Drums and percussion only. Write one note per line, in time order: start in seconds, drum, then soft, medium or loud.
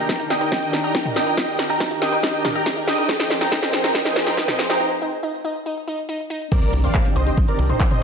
0.09 kick loud
0.09 snare medium
0.09 closed hi-hat soft
0.20 closed hi-hat medium
0.30 snare medium
0.30 open hi-hat medium
0.41 closed hi-hat medium
0.52 kick loud
0.52 snare medium
0.52 closed hi-hat medium
0.63 closed hi-hat soft
0.73 snare medium
0.73 open hi-hat loud
0.84 closed hi-hat soft
0.95 kick loud
0.95 snare medium
0.95 closed hi-hat medium
1.05 closed hi-hat soft
1.05 mid tom medium
1.16 snare medium
1.16 open hi-hat medium
1.22 closed hi-hat medium
1.27 closed hi-hat soft
1.37 kick loud
1.37 snare medium
1.37 closed hi-hat medium
1.48 closed hi-hat soft
1.59 snare medium
1.59 open hi-hat loud
1.70 closed hi-hat medium
1.80 kick loud
1.80 snare medium
1.80 closed hi-hat medium
1.91 closed hi-hat medium
2.02 snare medium
2.02 open hi-hat medium
2.13 closed hi-hat medium
2.23 kick loud
2.23 snare medium
2.23 closed hi-hat medium
2.34 closed hi-hat medium
2.45 snare medium
2.45 open hi-hat loud
2.45 mid tom medium
2.55 closed hi-hat medium
2.66 kick loud
2.66 snare medium
2.66 closed hi-hat medium
2.77 closed hi-hat medium
2.88 snare medium
2.88 open hi-hat medium
2.93 closed hi-hat medium
2.98 closed hi-hat medium
3.09 kick loud
3.09 snare medium
3.09 closed hi-hat medium
3.20 snare medium
3.20 closed hi-hat medium
3.30 snare medium
3.30 open hi-hat loud
3.41 snare medium
3.41 closed hi-hat medium
3.52 kick loud
3.52 snare medium
3.52 closed hi-hat medium
3.63 snare medium
3.63 closed hi-hat medium
3.73 snare medium
3.73 open hi-hat medium
3.84 snare medium
3.84 closed hi-hat medium
3.95 kick loud
3.95 snare medium
3.95 closed hi-hat medium
4.05 snare medium
4.05 closed hi-hat medium
4.16 snare loud
4.16 open hi-hat loud
4.27 snare medium
4.27 closed hi-hat medium
4.37 kick loud
4.37 snare loud
4.37 closed hi-hat medium
4.48 snare medium
4.48 closed hi-hat medium
4.48 mid tom medium
4.59 snare loud
4.59 open hi-hat medium
4.64 closed hi-hat medium
4.70 snare medium
4.70 closed hi-hat medium
6.52 kick loud
6.52 closed hi-hat medium
6.52 crash loud
6.63 closed hi-hat medium
6.73 open hi-hat loud
6.84 closed hi-hat medium
6.95 kick loud
6.95 clap loud
6.95 closed hi-hat medium
7.05 closed hi-hat medium
7.16 open hi-hat medium
7.27 closed hi-hat medium
7.37 kick loud
7.37 closed hi-hat medium
7.48 closed hi-hat medium
7.59 open hi-hat loud
7.70 closed hi-hat medium
7.70 mid tom medium
7.80 kick loud
7.80 clap loud
7.80 closed hi-hat medium
7.91 closed hi-hat medium
7.91 mid tom medium